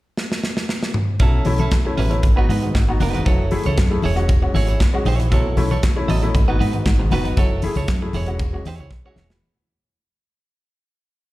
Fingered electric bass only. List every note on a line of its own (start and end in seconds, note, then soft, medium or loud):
1.20 1.41 B1 medium
1.46 1.67 B1 medium
1.98 2.19 A1 medium
2.23 2.35 G#1 medium
2.37 2.47 G#1 medium
2.49 2.70 G#2 loud
2.75 2.96 G#1 medium
3.01 3.22 F1 medium
3.26 3.59 F#1 medium
3.66 3.76 C#2 medium
3.78 3.99 F#2 medium
4.03 4.46 E1 medium
4.55 4.76 G#1 medium
5.07 5.32 A#1 medium
5.32 5.53 B1 medium
5.57 5.78 B1 loud
6.09 6.30 A1 medium
6.35 6.46 G#1 loud
6.48 6.58 G#1 medium
6.60 6.81 G#2 medium
6.86 7.07 G#1 medium
7.12 7.33 F1 medium
7.37 7.69 F#1 medium
7.76 7.86 C#2 medium
7.88 8.09 F#2 medium
8.14 8.57 E1 loud
8.66 8.77 E2 loud
8.79 8.91 C#2 medium
8.91 9.02 B1 medium
9.17 9.31 E1 medium
9.31 9.41 D#1 medium